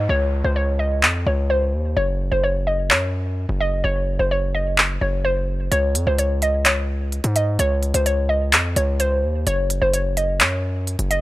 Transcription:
0.00 downlifter medium
0.09 0.43 C#2 loud
0.09 0.42 C#5 loud
0.44 1.04 C#2 loud
0.44 0.55 C5 medium
0.56 0.77 C#5 medium
0.79 1.23 D#5 medium
1.03 1.25 F2 loud
1.03 clap loud
1.26 1.75 C#2 loud
1.26 1.48 C#5 medium
1.50 1.94 C5 medium
1.73 1.96 D#2 loud
1.97 2.30 F#1 loud
1.97 2.30 C#5 loud
2.32 2.92 F#1 loud
2.32 2.42 C5 medium
2.43 2.65 C#5 medium
2.67 2.88 D#5 medium
2.91 3.46 F#2 loud
2.91 3.57 C#5 medium
2.91 clap loud
3.49 3.83 F#1 loud
3.60 3.82 D#5 medium
3.84 4.18 F#1 loud
3.84 4.17 C#5 loud
4.19 4.98 F#1 loud
4.19 4.30 C5 medium
4.31 4.52 C#5 loud
4.55 4.99 D#5 medium
4.78 clap loud
5.01 5.69 F#1 loud
5.01 5.23 C#5 medium
5.25 5.69 C5 medium
5.71 5.97 C#2 loud
5.71 6.05 C#5 loud
5.71 closed hi-hat medium
5.95 6.06 F2 loud
5.95 closed hi-hat medium
6.07 7.20 C#2 loud
6.07 6.18 C5 medium
6.19 6.40 C#5 medium
6.19 closed hi-hat medium
6.42 6.63 D#5 medium
6.42 closed hi-hat medium
6.65 7.32 C#5 medium
6.65 clap loud
6.65 closed hi-hat medium
7.12 closed hi-hat soft
7.24 7.58 G#2 loud
7.24 closed hi-hat medium
7.36 7.57 D#5 medium
7.36 closed hi-hat medium
7.59 7.93 C#2 loud
7.59 7.92 C#5 loud
7.59 closed hi-hat medium
7.83 closed hi-hat soft
7.94 8.54 C#2 loud
7.94 8.05 C5 medium
7.94 closed hi-hat medium
8.06 8.27 C#5 medium
8.06 closed hi-hat medium
8.29 8.73 D#5 medium
8.53 8.75 F2 loud
8.53 clap loud
8.53 closed hi-hat medium
8.76 9.25 C#2 loud
8.76 8.98 C#5 medium
8.76 closed hi-hat medium
9.00 9.44 C5 medium
9.00 closed hi-hat medium
9.23 9.46 D#2 loud
9.47 9.80 F#1 loud
9.47 9.80 C#5 loud
9.47 closed hi-hat medium
9.70 closed hi-hat medium
9.82 10.42 F#1 loud
9.82 9.92 C5 medium
9.94 10.15 C#5 medium
9.94 closed hi-hat medium
10.17 10.38 D#5 medium
10.17 closed hi-hat medium
10.40 10.96 F#2 loud
10.40 11.07 C#5 medium
10.40 clap loud
10.40 closed hi-hat medium
10.87 closed hi-hat soft
10.99 11.21 F#1 loud
10.99 closed hi-hat medium
11.11 11.21 D#5 medium
11.11 closed hi-hat medium

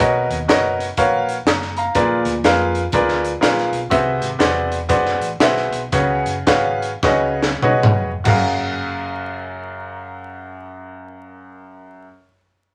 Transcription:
0.00 0.26 B1 loud
0.00 0.75 B2 medium
0.00 0.37 F#4 medium
0.00 0.37 A#4 medium
0.00 0.37 B4 medium
0.00 0.37 C#5 medium
0.00 0.37 D#5 medium
0.00 0.28 G#5 medium
0.00 kick loud
0.00 closed hi-hat loud
0.29 0.46 D#2 medium
0.29 closed hi-hat medium
0.48 0.90 F#1 medium
0.48 0.86 F#4 medium
0.48 0.86 A#4 medium
0.48 0.86 B4 medium
0.48 0.86 C#5 medium
0.48 0.86 D#5 loud
0.48 snare loud
0.48 closed hi-hat medium
0.80 closed hi-hat medium
0.97 1.39 A#1 loud
0.97 1.35 F#4 medium
0.97 1.35 A#4 medium
0.97 1.35 B4 medium
0.97 1.35 C#5 medium
0.97 1.35 F5 loud
0.97 kick loud
0.97 closed hi-hat medium
1.29 closed hi-hat medium
1.45 1.87 F#1 medium
1.45 1.76 A#5 medium
1.45 1.76 D#6 medium
1.45 snare loud
1.45 closed hi-hat loud
1.62 snare soft
1.77 2.24 F5 medium
1.77 2.24 A#5 medium
1.77 closed hi-hat medium
1.95 2.21 A#1 loud
1.95 2.71 A#2 medium
1.95 2.32 F4 medium
1.95 2.33 G#4 medium
1.95 2.32 A#4 medium
1.95 2.33 B4 medium
1.95 2.33 D5 medium
1.95 kick loud
1.95 closed hi-hat loud
2.25 2.41 D2 loud
2.25 closed hi-hat medium
2.43 2.85 F2 loud
2.43 2.81 F4 medium
2.43 2.81 G#4 medium
2.43 2.82 A#4 medium
2.43 2.82 B4 medium
2.43 2.82 F5 loud
2.43 snare loud
2.43 closed hi-hat medium
2.75 closed hi-hat medium
2.92 3.34 D2 loud
2.92 3.30 F4 medium
2.92 3.30 G#4 medium
2.92 3.30 A#4 medium
2.92 3.31 B4 medium
2.92 3.31 D5 medium
2.92 kick loud
2.92 closed hi-hat medium
3.08 snare soft
3.25 closed hi-hat medium
3.41 3.68 A#1 medium
3.41 3.79 F4 medium
3.41 3.79 G#4 medium
3.41 3.79 A#4 medium
3.41 3.79 B4 medium
3.41 3.79 F5 loud
3.41 snare loud
3.41 closed hi-hat loud
3.58 snare soft
3.72 3.88 B1 medium
3.72 closed hi-hat medium
3.90 4.17 C2 loud
3.90 4.67 C3 medium
3.90 4.28 F#4 medium
3.90 4.28 G#4 medium
3.90 4.28 B4 medium
3.90 4.28 C5 medium
3.90 4.28 E5 medium
3.90 kick loud
3.90 closed hi-hat medium
4.21 4.37 G#1 medium
4.21 closed hi-hat medium
4.39 4.89 E1 loud
4.39 4.77 F#4 medium
4.39 4.77 G#4 medium
4.39 4.77 B4 medium
4.39 4.77 C5 medium
4.39 4.77 D5 loud
4.39 snare loud
4.39 closed hi-hat medium
4.72 closed hi-hat medium
4.89 5.16 F#1 loud
4.89 5.27 F#4 medium
4.89 5.27 G#4 medium
4.89 5.28 B4 medium
4.89 5.28 C5 medium
4.89 5.28 D5 medium
4.89 kick loud
4.89 closed hi-hat loud
5.06 snare soft
5.20 5.37 A1 medium
5.20 closed hi-hat medium
5.40 5.68 B1 medium
5.40 5.80 F#4 medium
5.40 5.80 G#4 medium
5.40 5.80 B4 medium
5.40 5.80 C5 medium
5.40 5.80 E5 medium
5.40 snare loud
5.40 closed hi-hat loud
5.57 snare soft
5.72 5.89 B1 medium
5.72 closed hi-hat medium
5.92 6.21 C#2 loud
5.92 6.78 C#3 medium
5.92 6.33 F#4 medium
5.92 6.34 G#4 medium
5.92 6.33 B4 medium
5.92 6.34 C#5 medium
5.92 6.34 F#5 loud
5.92 kick loud
5.92 closed hi-hat loud
6.25 6.43 F#1 loud
6.25 closed hi-hat medium
6.47 6.95 G#1 medium
6.47 6.89 F#4 medium
6.47 6.89 G#4 medium
6.47 6.90 B4 medium
6.47 6.90 C#5 medium
6.47 6.90 F5 loud
6.47 kick medium
6.47 snare loud
6.47 closed hi-hat medium
6.82 closed hi-hat medium
7.03 7.53 C#2 loud
7.03 7.98 C#3 medium
7.03 7.48 F#4 medium
7.03 7.48 G#4 medium
7.03 7.48 B4 medium
7.03 7.48 C#5 medium
7.03 7.48 D#5 loud
7.03 kick loud
7.03 snare medium
7.43 snare medium
7.62 7.95 B1 medium
7.62 8.10 F#4 medium
7.62 8.10 G#4 medium
7.62 8.10 B4 medium
7.62 8.10 C#5 medium
7.62 8.10 D#5 medium
7.62 mid tom medium
7.83 floor tom loud
8.00 8.21 F1 medium
8.24 12.04 F#1 loud
8.24 12.05 F#2 medium
8.24 12.03 F#4 medium
8.24 12.05 G#4 medium
8.24 12.06 A#4 medium
8.24 kick loud
8.24 floor tom loud
8.24 crash medium
8.28 12.07 F5 loud

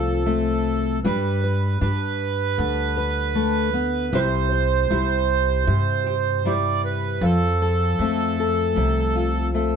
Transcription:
0.00 1.00 C2 medium
0.00 1.00 C3 medium
0.00 1.00 F3 medium
0.00 0.25 A3 medium
0.00 0.26 C4 medium
0.00 0.99 F4 medium
0.00 1.00 A4 medium
0.00 1.05 A4 medium
0.26 0.99 A3 medium
0.26 1.04 C4 medium
1.04 1.78 G2 medium
1.04 3.35 G3 medium
1.04 1.81 D4 medium
1.04 1.82 G4 medium
1.04 1.79 B4 medium
1.04 1.43 B4 medium
1.44 2.21 B4 medium
1.81 2.55 G2 medium
1.81 4.09 D4 medium
1.81 4.09 G4 medium
1.81 4.20 B4 loud
2.58 4.09 D2 medium
2.58 4.13 D3 medium
2.97 4.09 B4 medium
3.35 3.73 A3 medium
3.74 4.13 B3 medium
4.13 4.87 C2 loud
4.13 5.66 C3 medium
4.13 4.89 G3 medium
4.13 4.90 E4 medium
4.13 6.05 G4 medium
4.13 6.53 C5 loud
4.13 4.51 C5 medium
4.52 7.62 C5 medium
4.90 5.64 C2 medium
4.90 6.44 G3 medium
4.90 6.45 E4 medium
5.67 7.18 G2 medium
5.67 7.18 C3 medium
6.06 7.18 G4 medium
6.45 7.23 G3 medium
6.45 7.19 E4 medium
6.45 6.82 D5 loud
6.85 7.24 B4 medium
7.21 7.95 F2 loud
7.21 9.76 F3 medium
7.21 9.51 A4 loud
7.62 8.39 A4 medium
7.99 8.73 F2 medium
7.99 9.53 A3 medium
7.99 9.54 C4 medium
8.40 9.76 A4 medium
8.76 9.76 C2 medium
8.76 9.76 C3 medium
9.16 9.76 F4 medium
9.54 9.76 A3 medium
9.54 9.76 C4 medium
9.54 9.76 A4 medium

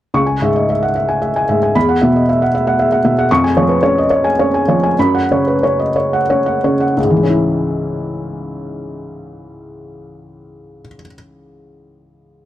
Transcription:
0.14 1.71 C#2 soft
0.14 0.36 C#6 medium
0.26 0.49 G#5 soft
0.42 0.85 G#2 soft
0.42 0.64 E5 soft
0.56 0.69 D#5 soft
0.70 0.91 E5 soft
0.83 0.96 F#5 soft
0.96 1.17 E5 soft
1.09 1.30 G#5 soft
1.22 1.43 E5 soft
1.36 1.57 G#5 soft
1.49 1.76 G#2 soft
1.49 1.70 E5 soft
1.63 1.76 G#5 soft
1.75 3.25 E2 soft
1.75 1.96 B5 medium
1.89 2.09 F#5 soft
2.02 2.43 B2 soft
2.02 2.22 E5 soft
2.16 2.28 D#5 soft
2.29 2.48 E5 medium
2.42 2.54 F#5 soft
2.55 2.74 E5 soft
2.67 2.87 F#5 soft
2.79 2.99 E5 medium
2.92 3.12 F#5 medium
3.05 3.30 B2 soft
3.05 3.25 E5 medium
3.19 3.30 F#5 medium
3.31 4.93 F2 medium
3.31 3.51 C#6 medium
3.44 3.64 G#5 medium
3.57 3.98 F3 medium
3.57 3.77 C#5 medium
3.69 3.82 B4 soft
3.83 4.25 C#4 medium
3.83 4.03 C#5 medium
3.98 4.10 D#5 soft
4.10 4.31 C#5 medium
4.24 4.46 G#5 medium
4.39 4.85 C#4 soft
4.39 4.61 C#5 medium
4.54 4.76 G#5 medium
4.68 4.98 F3 soft
4.68 4.91 C#5 soft
4.83 4.97 G#5 soft
4.99 6.94 F#2 medium
4.99 5.23 B5 medium
5.15 5.39 F#5 soft
5.31 5.82 C#3 soft
5.31 5.56 C#5 soft
5.47 5.62 B4 soft
5.63 6.16 C#4 soft
5.63 5.88 C#5 soft
5.79 5.95 D#5 soft
5.96 6.22 C#5 soft
6.13 6.39 F#5 soft
6.30 6.85 C#4 soft
6.30 6.57 C#5 soft
6.46 6.74 F#5 soft
6.64 6.98 C#3 soft
6.64 6.91 C#5 soft
6.80 6.97 F#5 soft
6.97 10.81 C#2 medium
7.04 10.88 G#2 soft
7.10 10.94 E3 soft
7.16 11.00 G#3 soft
7.23 11.07 C#4 soft
7.29 11.13 E4 soft

